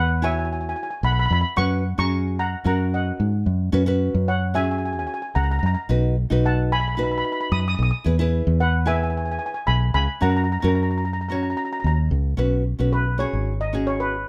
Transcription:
Already playing: E2
0.22 E4 F#4 C#5 E5 G#5
0.32 G#5
0.39 G#5
0.45 G#5
0.53 G#5
0.61 G#5
0.69 G#5
0.76 G#5
0.83 G#5
0.91 G#5
1.03 B1 F#5 B5
1.12 B5
1.19 B5
1.26 B5
1.30 F2 B5
1.41 B5
1.56 F#2 C#4 F#4 B4 F#5 C#6
1.98 F#2 C#4 F#4 G#4 A#5 C#6
2.39 F#5 A#5
2.64 F#2 C#4 F#4 A#4 F#5 A#5
2.94 D#5 F#5
3.20 G#2
3.46 F#2
3.72 F#2 C#4 F#4 B4
3.86 C#4 F#4 B4
4.14 F#2
4.28 C#5 F#5
4.54 C#4 F#4 G#4 E5 G#5
4.63 G#5
4.71 G#5
4.78 G#5
4.85 G#5
4.93 G#5
4.99 G#5
5.07 G#5
5.14 G#5
5.22 G#5
5.35 C#2 F#5 A#5
5.44 A#5
5.51 A#5
5.59 F#2 A#5
5.66 A#5
5.75 A#5
5.89 B1 D#4 F#4 B4
6.30 B1 D#4 F#4 B4
6.45 F#5 A5
6.72 G#5 B5
6.80 B5
6.88 B5
6.95 D#4 F#4 B4 B5
7.03 B5
7.11 B5
7.18 B5
7.25 B5
7.32 B5
7.41 B5
7.52 F#2 B5 D#6
7.60 D#6
7.68 D#6
7.75 B1 D#6
7.83 D#6
7.91 D#6
8.04 E2 E4 G#4 B4
8.19 E4 G#4 B4
8.47 E2
8.60 B4 F#5
8.86 E4 G#4 B4 E5 G#5
8.96 G#5
9.03 G#5
9.10 G#5
9.17 G#5
9.25 G#5
9.32 G#5
9.39 G#5
9.46 G#5
9.54 G#5
9.67 B1 G#5 B5
9.94 C#2 G#5 B5
10.21 F#2 C#4 F#4 A#4 F#5 A#5
10.30 A#5
10.37 A#5
10.44 A#5
10.52 A#5
10.60 F#2 C#4 F#4 A#4 A#5
10.68 A#5
10.75 A#5
10.83 A#5
10.91 A#5
10.98 A#5
11.05 A#5
11.13 A#5
11.21 A#5
11.29 C#4 F#4 C#5 A#5
11.35 A#5
11.43 A#5
11.50 A#5
11.57 A#5
11.65 A#5
11.73 A#5
11.80 A#5
11.84 D#2 A#5
12.11 C#2
12.37 B1 C#4 F#4 B4
12.79 B1 C#4 F#4 B4
12.93 B4
13.18 C#4 F#4 G#4 C#5
13.33 G#1
13.61 D#5
13.73 C#4 F#4 G#4
13.87 C#5
14.00 B4

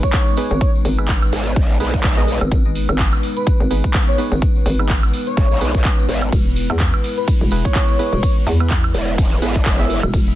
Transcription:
Already playing: G#3 B3 D#4 B4
0.03 C#5, kick, closed hi-hat, tambourine
0.13 kick, clap, closed hi-hat, tambourine
0.28 tambourine
0.37 B3 D#4 G#4 B4, open hi-hat, tambourine
0.50 G#1, closed hi-hat, tambourine
0.61 kick, closed hi-hat, tambourine
0.75 tambourine
0.85 G#1, open hi-hat, tambourine
0.98 B3 D#4 G#4 B4, closed hi-hat, tambourine, high woodblock
1.08 kick, clap, closed hi-hat, tambourine
1.22 tambourine, high woodblock
1.33 G#1, open hi-hat, tambourine
1.46 closed hi-hat, tambourine
1.56 kick, closed hi-hat, tambourine
1.70 tambourine
1.80 B1 B3 D#4 G#4 B4, open hi-hat, tambourine
1.94 kick, closed hi-hat
2.03 A#1, kick, clap, closed hi-hat, tambourine
2.17 B3 D#4 G#4 D#5, tambourine
2.28 open hi-hat, tambourine
2.41 G#1, closed hi-hat, tambourine, high woodblock
2.52 G#1, kick, closed hi-hat, tambourine
2.65 tambourine
2.75 open hi-hat, tambourine
2.89 G#1, closed hi-hat, tambourine, high woodblock
2.99 kick, clap, closed hi-hat, tambourine
3.12 tambourine, high woodblock
3.23 open hi-hat, tambourine
3.36 B4, closed hi-hat, tambourine
3.47 kick, closed hi-hat, tambourine
3.60 G#1, tambourine
3.70 B3 D#4 G#4 B4, open hi-hat, tambourine
3.84 kick, closed hi-hat, tambourine
3.94 kick, clap, closed hi-hat, tambourine
4.08 C#5, tambourine
4.18 B3 D#4 G#4 B4, open hi-hat, tambourine
4.32 G#1, closed hi-hat, tambourine
4.42 kick, closed hi-hat, tambourine
4.55 tambourine
4.66 G#1, open hi-hat, tambourine
4.79 B3 D#4 G#4 B4, closed hi-hat, tambourine, high woodblock
4.89 kick, clap, closed hi-hat, tambourine
5.03 tambourine, high woodblock
5.13 open hi-hat, tambourine
5.27 C#5, closed hi-hat, tambourine
5.37 G#1, kick, closed hi-hat, tambourine
5.51 B1, tambourine
5.61 B3 D#4 G#4 B4, open hi-hat, tambourine
5.75 kick, closed hi-hat, tambourine
5.85 kick, clap, closed hi-hat, tambourine
5.99 tambourine
6.09 G#1, open hi-hat, tambourine
6.22 closed hi-hat, high woodblock
6.32 E1 G#3 E4, kick, closed hi-hat, ride, tambourine
6.46 tambourine
6.56 open hi-hat, tambourine
6.70 E2, closed hi-hat, high woodblock
6.80 kick, clap, closed hi-hat, ride, tambourine
6.94 tambourine, high woodblock
7.04 open hi-hat, tambourine
7.17 B4, closed hi-hat, tambourine
7.28 kick, closed hi-hat, ride, tambourine
7.41 E1, tambourine
7.51 B3 E4 G#4 B4, open hi-hat, tambourine
7.65 C#5, kick, closed hi-hat, tambourine
7.75 kick, clap, closed hi-hat, ride, tambourine
7.89 tambourine
7.99 B3 E4 G#4 B4, open hi-hat, tambourine
8.13 E1, closed hi-hat, tambourine
8.23 kick, closed hi-hat, ride, tambourine
8.37 tambourine
8.47 E2, open hi-hat, tambourine
8.60 B3 E4 G#4 B4, closed hi-hat, tambourine, high woodblock
8.70 kick, clap, closed hi-hat, ride, tambourine
8.84 tambourine, high woodblock
8.94 E1, open hi-hat, tambourine
9.08 closed hi-hat, tambourine
9.18 kick, closed hi-hat, ride, tambourine
9.32 tambourine
9.42 G#1 B3 E4 G#4 B4, open hi-hat, tambourine
9.56 kick, closed hi-hat
9.66 F#1, kick, clap, closed hi-hat, ride, tambourine
9.79 B3 E4 G#4 E5, tambourine
9.90 open hi-hat, tambourine
10.03 E1, closed hi-hat, tambourine, high woodblock
10.14 E1, kick, closed hi-hat, ride, tambourine
10.27 tambourine

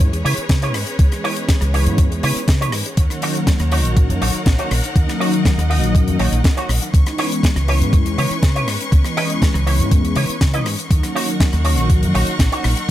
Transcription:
Already playing: G#2 C#4 G#4 B4 C#5
0.00 kick
0.12 E2 E3 G#3 B3 C#4 D#4, closed hi-hat
0.25 C#3 E4 B4 C#5, open hi-hat
0.37 muted fingered electric bass stroke, closed hi-hat
0.49 C#3, kick, snare, closed hi-hat
0.62 E3 G#3 B3 C#4 D#4 E4 B4 C#5, closed hi-hat
0.74 G#2, cross-stick, open hi-hat
0.87 muted clean electric guitar stroke, closed hi-hat
0.98 C#2 E3 G#3 B3 C#4 D#5, kick, closed hi-hat
1.12 cross-stick, closed hi-hat
1.24 E4 B4 C#5, open hi-hat
1.36 E3 G#3 B3 C#4 E4, closed hi-hat
1.48 muted clean electric guitar stroke, kick, snare, closed hi-hat
1.61 C#2, cross-stick, closed hi-hat
1.73 E3 G#3 B3 C#4 E4 B4 C#5, open hi-hat
1.86 G#2, closed hi-hat
1.98 kick, closed hi-hat
2.10 E2 E3 G#3 B3 C#4 D#4, closed hi-hat
2.23 C#3 E4 B4 C#5, open hi-hat
2.36 muted fingered electric bass stroke, closed hi-hat
2.48 C#3, kick, snare, closed hi-hat
2.60 E3 G#3 B3 C#4 D#4 E4 B4 C#5, closed hi-hat
2.72 G#2, cross-stick, open hi-hat
2.85 muted clean electric guitar stroke, closed hi-hat
2.97 D#2 D#3 F#3 A#3 C#4 D#4 A#4 C#5 F#5, kick, closed hi-hat
3.10 cross-stick, closed hi-hat
3.22 D#4 F#4 C#5, open hi-hat
3.35 D#3 F#3 A#3 C#4 F#4, closed hi-hat
3.47 muted clean electric guitar stroke, kick, snare, closed hi-hat
3.60 D#2, cross-stick, closed hi-hat
3.71 D#3 F#3 A#3 C#4 D#4 F#4 C#5, open hi-hat
3.85 A#1, closed hi-hat
3.97 kick, closed hi-hat
4.09 F#2 D#3 F#3 A#3 C#4 D#4, closed hi-hat
4.21 A#1 D#4 F#4 C#5, open hi-hat
4.34 muted fingered electric bass stroke, closed hi-hat
4.46 A#1, kick, snare, closed hi-hat
4.59 D#3 F#3 A#3 C#4 D#4 F#4 C#5, closed hi-hat
4.71 A#1, cross-stick, open hi-hat
4.84 muted clean electric guitar stroke, closed hi-hat
4.96 D#2 D#3 F#3 A#3 C#4 D#4 D#5, kick, closed hi-hat
5.08 cross-stick, snare, closed hi-hat
5.20 D#4 F#4 C#5, open hi-hat
5.33 D#3 F#3 A#3 C#4 F#4, closed hi-hat
5.45 muted clean electric guitar stroke, kick, snare, closed hi-hat
5.58 D#2, cross-stick, closed hi-hat
5.69 D#3 F#3 A#3 C#4 D#4 F#4 D#5, open hi-hat
5.83 A#1, closed hi-hat
5.95 kick, closed hi-hat
6.07 F#2 D#3 F#3 A#3 C#4 D#4, closed hi-hat
6.19 A#1 D#4 F#4 C#5, open hi-hat
6.32 A#1, closed hi-hat
6.44 kick, snare, closed hi-hat
6.57 D#3 F#3 A#3 C#4 D#4 F#4 C#5, closed hi-hat
6.69 A#1, cross-stick, open hi-hat
6.81 muted clean electric guitar stroke, closed hi-hat
6.93 C#2 E3 G#3 B3 C#4 D#4 B4 C#6, kick, closed hi-hat
7.06 cross-stick, closed hi-hat
7.18 E4 B4 C#5, open hi-hat
7.31 E3 G#3 B3 C#4 E4, closed hi-hat
7.43 muted clean electric guitar stroke, kick, snare, closed hi-hat
7.56 C#2, cross-stick, closed hi-hat
7.68 E3 G#3 B3 C#4 E4 B4 C#5, open hi-hat
7.81 G#2, closed hi-hat
7.93 kick, closed hi-hat
8.06 E2 E3 G#3 B3 C#4 D#4, closed hi-hat
8.18 C#3 E4 B4 C#5, open hi-hat
8.31 muted fingered electric bass stroke, closed hi-hat
8.43 C#3, kick, snare, closed hi-hat
8.55 E3 G#3 B3 C#4 D#4 E4 B4 C#5, closed hi-hat
8.67 G#2, cross-stick, open hi-hat
8.80 muted clean electric guitar stroke, closed hi-hat
8.92 C#2 E3 G#3 B3 C#4 D#5, kick, closed hi-hat
9.05 cross-stick, closed hi-hat
9.17 E4 B4 D#5, open hi-hat
9.30 E3 G#3 B3 C#4 E4, closed hi-hat
9.42 muted clean electric guitar stroke, kick, snare, closed hi-hat
9.54 C#2, cross-stick, closed hi-hat
9.66 E3 G#3 B3 C#4 E4 B4 C#5, open hi-hat
9.80 G#2, closed hi-hat
9.91 kick, closed hi-hat
10.04 E2 E3 G#3 B3 C#4 D#4, closed hi-hat
10.15 C#3 E4 B4 C#5, open hi-hat
10.29 muted fingered electric bass stroke, closed hi-hat
10.41 C#3, kick, snare, closed hi-hat
10.54 E3 G#3 B3 C#4 D#4 E4 B4 D#5, closed hi-hat
10.66 G#2, cross-stick, open hi-hat
10.78 muted clean electric guitar stroke, closed hi-hat
10.90 D#2 D#3 F#3 A#3 C#4 D#4 A#4 F#5 C#6, kick, closed hi-hat
11.03 cross-stick, closed hi-hat
11.15 D#4 F#4 C#5, open hi-hat
11.28 D#3 F#3 A#3 C#4 F#4, closed hi-hat
11.40 muted clean electric guitar stroke, kick, snare, closed hi-hat
11.53 D#2, cross-stick, closed hi-hat
11.64 D#3 F#3 A#3 C#4 D#4 F#4 C#5, open hi-hat
11.78 A#1, closed hi-hat
11.90 kick, closed hi-hat
12.02 F#2 D#3 F#3 A#3 C#4 D#4, closed hi-hat
12.14 A#1 D#4 F#4 C#5, open hi-hat
12.27 closed hi-hat
12.39 A#1, kick, snare, closed hi-hat
12.52 D#3 F#3 A#3 C#4 D#4 F#4 C#5, closed hi-hat
12.64 A#1, cross-stick, open hi-hat
12.76 muted clean electric guitar stroke, closed hi-hat

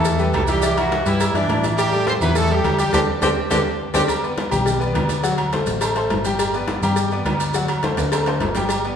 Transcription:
Already playing: E2 E3 A3 E4 A4 E5
0.05 cowbell, high conga, maracas
0.19 G3 A3 G4 A4 B4, high conga, maracas
0.33 C2 A3 A4, cowbell, high conga, low timbale, low agogo, maracas
0.47 E3 G3 E4 G4 E5, cowbell, low agogo, maracas
0.62 E3 E4 E5, cowbell, maracas
0.77 E3 F#3 E4 F#4 E5, cowbell, high conga, low agogo, maracas
0.92 cowbell, high conga, low timbale, low agogo, maracas
1.06 G2 E3 G3 E4 G4 B4, cowbell, high conga, maracas
1.20 cowbell, high conga, low agogo, maracas
1.34 G2 E3 D4 E4 D5 E5, cowbell, maracas
1.48 A2 E3 E4 E5, cowbell, high conga, low timbale, low agogo, maracas
1.64 E3 E4 E5, cowbell, low agogo, maracas
1.77 G3 G4, cowbell, high conga, low agogo, maracas
1.92 G3 G4 A4, high conga, maracas
2.07 C4 C5, cowbell, high conga, low timbale, low agogo, maracas
2.21 E2 E3 B3 E4 B4 E5, high conga, low conga, low agogo, maracas
2.35 A3 A4, cowbell, high conga, maracas
2.50 G3 G4 A4, high conga, maracas
2.64 D2, cowbell, high conga, low timbale, low agogo, maracas
2.78 G3 G4 G5, cowbell, low agogo, maracas
2.92 D2 C4 D4 G4 A4, cowbell, high conga, high timbale, maracas
3.21 D2 C4 D4 G4 A4, cowbell, high conga, high timbale, maracas
3.50 D2 C4 D4 G4 A4, cowbell, high conga, high timbale, maracas
3.94 D2 C4 D4 G4 A4, cowbell, high conga, high timbale, maracas
4.08 cowbell, high conga, low agogo, maracas
4.23 B3 B4 D5, high conga, maracas
4.38 cowbell, high conga, low timbale, low agogo, maracas
4.51 B1 G3 G4 G5, high conga, low conga, low agogo, maracas
4.66 cowbell, high conga, low conga, maracas
4.80 B3 B4 D5, high conga, maracas
4.94 D2 B3 B4 D5, cowbell, high conga, low timbale, low agogo, maracas
5.09 cowbell, high conga, low agogo, maracas
5.23 F#3 F#4 F#5, cowbell, high conga, maracas
5.38 cowbell, high conga, low agogo, maracas
5.53 A3 A4 C5, cowbell, high conga, low timbale, low agogo, maracas
5.66 A1, cowbell, high conga, maracas
5.81 A3 A4 C5, cowbell, high conga, low agogo, maracas
5.96 A3 A4 C5, cowbell, high conga, maracas
6.10 G1, cowbell, high conga, low timbale, low agogo, maracas
6.25 G3 G4 G5, cowbell, high conga, low agogo, maracas
6.39 cowbell, high conga, low agogo, maracas
6.54 B3 B4 D5, high conga, maracas
6.68 cowbell, high conga, low timbale, low agogo, maracas
6.82 G2 G3 G4 G5, high conga, low conga, low agogo, maracas
6.96 cowbell, high conga, maracas
7.11 B3 B4 D5, high conga, maracas
7.25 D2 B3 B4 D5, cowbell, high conga, low timbale, low agogo, maracas
7.40 cowbell, low agogo, maracas
7.54 F#3 F#4 F#5, cowbell, high conga, maracas
7.68 cowbell, high conga, low agogo, maracas
7.83 A3 A4 C5, cowbell, high conga, low timbale, low agogo, maracas
7.97 D2, cowbell, high conga, high timbale, maracas
8.12 A3 A4 C5, cowbell, high conga, high timbale, low agogo, maracas
8.26 A3 A4 C5, cowbell, high conga, high timbale, maracas
8.40 G1, cowbell, high conga, low timbale, low agogo, maracas
8.55 G3 G4 G5, cowbell, high conga, low timbale, low agogo, maracas
8.69 cowbell, high conga, low agogo, maracas
8.84 B3 B4 D5, high conga, maracas

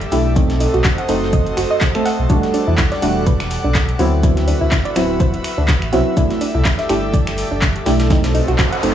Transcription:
Already playing: G4 A4 D5 E5
0.01 closed hi-hat
0.12 B1 A3 D4 E4 G4, open hi-hat, shaker
0.36 A3 C4 D#4 F#4 C5 D#5, kick, closed hi-hat, shaker
0.50 snare, closed hi-hat
0.60 D#4, open hi-hat, shaker
0.74 B1 F#4, closed hi-hat
0.84 F#1 F#4, kick, snare, clap, closed hi-hat, shaker
0.98 F#5, closed hi-hat
1.09 F#1 A3 C4 D#4 A4, open hi-hat, shaker
1.22 snare
1.33 D#5, kick, closed hi-hat, shaker
1.47 closed hi-hat
1.57 F#1 F#4, finger snap, open hi-hat, shaker
1.71 D#5
1.81 kick, snare, clap, closed hi-hat, shaker
1.95 A3 C4 A4, finger snap, closed hi-hat
2.06 F#5, snare, open hi-hat, shaker
2.19 B1
2.30 G3 A3 D4 F#4 D5 F#5, kick, closed hi-hat, shaker
2.43 snare, closed hi-hat
2.54 D4, open hi-hat, shaker
2.67 E2 E4
2.78 B1 E4, kick, snare, clap, closed hi-hat, shaker
2.92 D5, snare, closed hi-hat
3.02 E1 G3 A3 D4 F#4, open hi-hat, shaker
3.26 B4, kick, closed hi-hat, shaker
3.40 finger snap, snare, closed hi-hat
3.51 snare, open hi-hat, shaker
3.64 B1 D4
3.75 kick, snare, clap, closed hi-hat, shaker
3.89 closed hi-hat
3.99 D2 F#3 B3 C4 E4 F#4 B4 E5, open hi-hat, shaker
4.23 F#3 B3 C4 D4 E4, kick, closed hi-hat, shaker
4.37 snare, closed hi-hat
4.47 D4, open hi-hat, shaker
4.61 D2 E4
4.71 A1 E4, kick, snare, clap, closed hi-hat, shaker
4.85 D5, closed hi-hat
4.96 D1 F#3 B3 C4 E4 F#4, finger snap, open hi-hat, shaker
5.20 C5, kick, closed hi-hat, shaker
5.34 closed hi-hat
5.44 finger snap, open hi-hat, shaker
5.58 D2 D4
5.68 kick, snare, clap, closed hi-hat, shaker
5.82 A1, finger snap, closed hi-hat
5.93 C2 F#3 B3 C4 E4 F#4, snare, open hi-hat, shaker
6.17 A3 D4 E4 G4 A4 D5, kick, closed hi-hat, shaker
6.30 snare, closed hi-hat
6.41 D4, open hi-hat, shaker
6.55 C2 E4
6.65 G1 E4, kick, snare, clap, closed hi-hat, shaker
6.79 E5, snare, closed hi-hat
6.89 G1 A3 D4 E4 G4, finger snap, open hi-hat, shaker
7.14 D5, kick, closed hi-hat, shaker
7.27 finger snap, snare, closed hi-hat
7.38 snare, open hi-hat, shaker
7.51 G1 D4
7.62 kick, snare, clap, closed hi-hat, shaker
7.76 closed hi-hat
7.86 B1 A3 D4 E4 G4, snare, open hi-hat, shaker
8.00 snare, shaker
8.10 A3 C4 D#4 F#4 C5 D#5, kick, snare, closed hi-hat, noise sweep, shaker
8.24 snare, closed hi-hat, shaker
8.35 D#4, open hi-hat, shaker
8.48 B1 F#4, closed hi-hat
8.58 F#1 F#4, kick, snare, clap, closed hi-hat, shaker
8.72 F#5, closed hi-hat
8.83 F#1 A3 C4 D#4 A4, open hi-hat, shaker

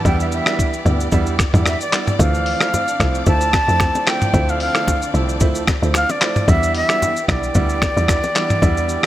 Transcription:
Already playing: E3 B3 G4 D5
0.05 E2 G3 B3 D4 E4 G5, kick, shaker
0.20 E5, shaker
0.32 E5, shaker
0.46 G3 B3 D4 E4, finger snap, cross-stick, shaker
0.59 kick, shaker
0.73 shaker
0.85 D2 G3 B3 D4 E4, mid tom, shaker
1.00 shaker
1.12 E2 G3 B3 D4 E4, kick, shaker
1.26 shaker
1.39 finger snap, kick, cross-stick, shaker
1.53 E2 G3 B3 D4 E4, mid tom, shaker
1.66 E5, finger snap, cross-stick, shaker
1.81 D5, shaker
1.92 G3 B3 D4 E4, finger snap, cross-stick, clap, shaker
2.07 mid tom, shaker
2.19 D2 D3 E3 F3 A3 C4 D4 F5, kick, low conga, shaker
2.34 shaker
2.46 open hi-hat
2.60 F3 A3 C4 E4, finger snap, cross-stick, shaker
2.74 high bongo, low conga, shaker
2.88 shaker
3.00 C2 F3 A3 C4 E4, finger snap, kick, cross-stick, shaker
3.15 shaker
3.26 D2 F3 A3 C4 E4 A5, kick, low conga, shaker
3.41 shaker
3.53 finger snap, kick, cross-stick, low bongo, shaker
3.68 F2 F3 A3 C4 E4, shaker
3.80 finger snap, kick, cross-stick, high bongo, shaker
3.95 low bongo, shaker
4.07 F3 A3 C4 E4 G5, finger snap, cross-stick, clap, shaker
4.21 mid tom, shaker
4.33 D2 F3 A3 C4 E4, kick, low conga, shaker
4.49 F5, shaker
4.60 F5, open hi-hat
4.75 F3 A3 C4 E4, finger snap, cross-stick, shaker
4.88 kick, high bongo, low conga, shaker
5.02 shaker
5.14 C2 F3 A3 C4 E4, shaker
5.29 shaker
5.40 D2 F3 A3 C4 E4, kick, low conga, shaker
5.55 shaker
5.67 finger snap, kick, cross-stick, low bongo, shaker
5.82 D2 F3 A3 C4 E4, shaker
5.94 F5, finger snap, cross-stick, high bongo, shaker
6.09 D5, low bongo, shaker
6.21 F3 A3 C4 E4, finger snap, cross-stick, clap, shaker
6.36 mid tom, shaker
6.48 E2 E3 G3 B3 D4 E4 G4 E5, kick, low conga, shaker
6.63 shaker
6.75 E5, open hi-hat
6.89 G3 B3 D4 E4, finger snap, cross-stick, shaker
7.02 high bongo, low conga, shaker
7.16 shaker
7.28 B1 G3 B3 D4 E4 D5, finger snap, kick, cross-stick, shaker
7.43 shaker
7.54 D2 G3 B3 D4 E4, kick, low conga, shaker
7.69 shaker
7.82 finger snap, kick, cross-stick, low bongo, shaker
7.96 E2 G3 B3 D4 E4, shaker
8.08 finger snap, kick, cross-stick, high bongo, shaker
8.23 low bongo, shaker
8.35 G3 B3 D4 E4, finger snap, cross-stick, clap, shaker
8.50 mid tom, shaker
8.62 E2 G3 B3 D4 E4, kick, low conga, shaker
8.77 shaker
8.89 shaker
9.03 cross-stick

